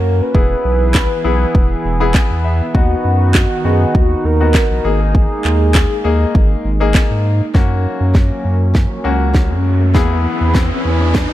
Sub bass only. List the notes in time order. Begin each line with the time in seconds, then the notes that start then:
Already playing: F#2
0.35 E1
0.65 B1
1.25 B1
1.55 E1
1.85 E1
2.30 E2
2.75 D#2
3.05 F#2
3.65 F#2
3.95 D#2
4.25 D#2
4.71 A#1
4.85 G#1
5.45 D#2
6.05 D#2
6.35 G#1
6.65 G#1
7.11 G#2
7.55 F#2
8.01 F#2
8.45 F#2
9.05 C#2
9.51 F#2
9.95 E2
10.41 E2
10.85 E2